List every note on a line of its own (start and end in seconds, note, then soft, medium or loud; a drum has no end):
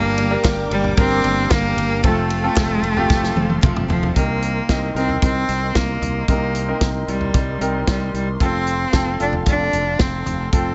0.00 0.35 G1 loud
0.00 0.18 G2 medium
0.00 0.67 G2 medium
0.00 0.18 D3 medium
0.00 0.18 G3 medium
0.00 0.18 A#3 medium
0.00 0.41 A#3 loud
0.00 0.17 D4 loud
0.00 0.26 D4 medium
0.00 0.16 G4 medium
0.00 0.26 G4 medium
0.00 0.26 A#4 medium
0.00 2.01 A#4 medium
0.00 2.01 G5 medium
0.00 2.01 D6 medium
0.18 0.44 G3 soft
0.18 0.44 A#3 medium
0.18 0.45 D4 medium
0.18 0.44 G4 medium
0.18 ride medium
0.31 0.88 D4 medium
0.31 0.88 G4 medium
0.31 0.88 A#4 medium
0.44 0.66 G1 medium
0.44 0.71 G2 loud
0.44 0.71 D3 loud
0.44 0.71 G3 loud
0.44 0.72 A#3 loud
0.44 0.71 D4 loud
0.44 0.70 G4 medium
0.44 kick loud
0.44 snare loud
0.44 clap loud
0.44 ride medium
0.70 0.92 G1 medium
0.70 0.96 G3 loud
0.70 0.97 A#3 medium
0.70 0.98 D4 medium
0.70 0.98 G4 medium
0.70 ride medium
0.74 0.96 G3 medium
0.84 floor tom medium
0.97 1.19 G1 loud
0.97 1.24 G3 medium
0.97 1.25 A#3 medium
0.97 1.54 C4 loud
0.97 1.89 D4 medium
0.97 1.24 D4 medium
0.97 1.89 G4 medium
0.97 1.22 G4 medium
0.97 1.89 A#4 medium
0.97 kick loud
0.97 ride medium
1.24 1.46 G1 medium
1.24 1.50 G3 soft
1.24 1.50 A#3 medium
1.24 1.51 D4 medium
1.24 1.50 G4 medium
1.24 ride medium
1.50 1.72 G1 medium
1.50 1.77 G2 medium
1.50 1.77 D3 medium
1.50 1.77 G3 medium
1.50 1.77 A#3 medium
1.50 2.04 A#3 loud
1.50 1.76 D4 medium
1.50 1.75 G4 medium
1.50 kick loud
1.50 snare loud
1.50 clap medium
1.50 ride medium
1.76 2.04 G1 loud
1.76 2.03 G3 medium
1.76 2.04 A#3 medium
1.76 2.04 D4 medium
1.76 2.03 G4 medium
1.76 ride medium
2.03 2.47 F1 loud
2.03 2.30 F2 medium
2.03 2.30 C3 medium
2.03 2.30 F3 medium
2.03 2.30 A3 medium
2.03 3.60 A3 loud
2.03 2.38 C4 medium
2.03 2.29 C4 medium
2.03 2.38 F4 medium
2.03 4.14 A4 medium
2.03 2.38 A4 medium
2.03 2.28 A4 loud
2.03 4.14 F5 medium
2.03 4.14 C6 medium
2.03 kick loud
2.03 ride medium
2.29 2.56 F3 medium
2.29 2.56 A3 soft
2.29 2.56 C4 medium
2.29 2.56 A4 medium
2.29 ride medium
2.44 2.89 C4 medium
2.44 2.89 F4 medium
2.44 2.89 A4 medium
2.56 2.78 F1 medium
2.56 2.83 F2 medium
2.56 2.83 C3 medium
2.56 2.83 F3 loud
2.56 2.83 A3 loud
2.56 2.82 C4 loud
2.56 2.80 A4 medium
2.56 kick loud
2.56 snare loud
2.56 clap loud
2.56 ride medium
2.82 3.04 F1 medium
2.82 3.07 F3 medium
2.82 3.09 A3 soft
2.82 3.10 C4 medium
2.82 3.09 A4 medium
2.82 ride medium
2.97 3.88 C4 medium
2.97 3.88 F4 medium
2.97 3.88 G4 loud
2.97 floor tom medium
3.09 3.32 F1 loud
3.09 3.36 F3 medium
3.09 3.36 A3 medium
3.09 3.35 C4 medium
3.09 3.33 A4 medium
3.09 kick loud
3.09 snare medium
3.23 snare medium
3.35 3.57 F1 loud
3.35 3.61 F3 soft
3.35 3.62 A3 soft
3.35 3.62 C4 medium
3.35 3.62 A4 medium
3.35 high tom medium
3.50 high tom medium
3.61 3.85 F1 loud
3.61 3.89 F2 medium
3.61 3.89 C3 medium
3.61 3.89 F3 medium
3.61 3.88 F3 medium
3.61 3.89 A3 medium
3.61 3.88 C4 medium
3.61 3.87 A4 medium
3.61 kick loud
3.61 clap medium
3.61 mid tom medium
3.76 mid tom medium
3.88 4.10 F1 medium
3.88 4.14 F3 medium
3.88 4.17 F3 medium
3.88 4.17 A3 medium
3.88 4.16 C4 medium
3.88 4.15 A4 medium
3.88 floor tom loud
4.03 floor tom medium
4.16 4.60 C2 medium
4.16 4.92 C3 soft
4.16 4.92 A#3 medium
4.16 4.62 C4 medium
4.16 4.62 D#4 medium
4.16 8.37 A#4 medium
4.16 4.62 A#4 medium
4.16 8.37 D#5 medium
4.16 10.75 C6 medium
4.16 kick loud
4.16 closed hi-hat medium
4.42 closed hi-hat medium
4.69 4.91 C2 medium
4.69 4.92 C4 medium
4.69 4.92 D#4 medium
4.69 4.92 A#4 medium
4.69 kick medium
4.69 snare medium
4.69 closed hi-hat medium
4.94 5.17 C2 medium
4.94 5.87 C4 medium
4.94 5.21 C4 medium
4.94 5.87 D#4 medium
4.94 5.87 A#4 medium
4.94 closed hi-hat medium
5.09 floor tom soft
5.22 5.44 C2 medium
5.22 5.78 C4 loud
5.22 kick loud
5.22 closed hi-hat medium
5.49 5.70 C2 medium
5.49 closed hi-hat medium
5.75 5.97 C2 loud
5.75 6.29 A#3 medium
5.75 kick medium
5.75 snare loud
5.75 closed hi-hat medium
6.01 6.23 C2 medium
6.01 closed hi-hat medium
6.01 floor tom medium
6.28 6.72 C2 medium
6.28 7.05 C3 medium
6.28 6.79 A#3 medium
6.28 6.63 C4 medium
6.28 6.63 D#4 medium
6.28 6.63 A#4 medium
6.28 kick medium
6.28 closed hi-hat medium
6.55 closed hi-hat medium
6.68 7.48 C4 medium
6.68 7.48 D#4 medium
6.68 7.48 A#4 medium
6.81 7.03 C2 medium
6.81 kick loud
6.81 snare medium
6.81 closed hi-hat medium
7.08 7.30 C2 medium
7.08 7.84 G3 medium
7.08 closed hi-hat medium
7.21 floor tom medium
7.34 7.56 C2 medium
7.34 kick loud
7.34 closed hi-hat medium
7.61 7.83 C2 medium
7.61 8.29 C4 medium
7.61 8.29 D#4 medium
7.61 8.30 A#4 medium
7.61 closed hi-hat medium
7.87 8.09 C2 medium
7.87 8.13 G3 medium
7.87 kick loud
7.87 snare loud
7.87 closed hi-hat medium
8.14 8.36 C2 medium
8.14 8.27 G3 medium
8.14 closed hi-hat medium
8.40 8.84 F1 medium
8.40 8.86 C4 medium
8.40 9.17 C4 loud
8.40 8.86 F4 medium
8.40 10.75 A4 medium
8.40 8.87 A4 medium
8.40 10.51 F5 medium
8.40 kick medium
8.40 closed hi-hat medium
8.67 closed hi-hat medium
8.93 9.15 F1 medium
8.93 9.17 C4 medium
8.93 9.17 F4 medium
8.93 9.17 A4 medium
8.93 kick medium
8.93 snare loud
8.93 closed hi-hat medium
9.20 9.42 F1 medium
9.20 10.12 C4 medium
9.20 9.33 D4 medium
9.20 10.12 F4 medium
9.20 10.12 A4 medium
9.20 closed hi-hat medium
9.33 floor tom medium
9.46 9.69 F1 medium
9.46 10.02 D4 loud
9.46 kick loud
9.46 closed hi-hat medium
9.73 9.95 F1 medium
9.73 closed hi-hat medium
9.99 10.22 F1 medium
9.99 10.53 C4 medium
9.99 kick loud
9.99 snare loud
9.99 closed hi-hat medium
10.26 10.48 F1 medium
10.26 closed hi-hat medium
10.26 floor tom medium
10.52 10.75 F1 medium
10.52 10.75 C4 medium
10.52 10.75 F4 medium
10.52 10.75 A4 medium
10.52 10.75 G5 medium
10.52 kick loud
10.52 closed hi-hat medium